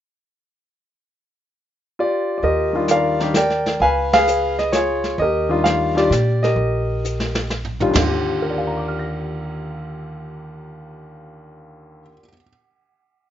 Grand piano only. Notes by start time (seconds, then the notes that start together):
1.99 F4 G4 D5
2.38 D5
2.44 G4 A#4 D#5
2.73 D#3 G3 D4 F4
2.91 A#4 D5 F5
3.20 D#3 G3 D4 G4
3.36 A#4 D5 G5
3.82 B4 F5 G#5
4.14 G#4 B4 F5
4.59 D#5
4.72 F4 G#4 C#5
5.19 G4 A#4 D#5
5.49 D#3 G3 D4 F4
5.64 F5
5.95 D#3 G3 D4 F4 D5
5.99 G4
6.43 G4 A#4 D#5
7.80 D#2 D#3 G3 D4 F4
7.91 D3
7.99 F4
8.08 G4
8.42 A#4
8.50 D5
8.58 F5
8.67 A#5
8.77 D6
8.88 F6
8.99 A#6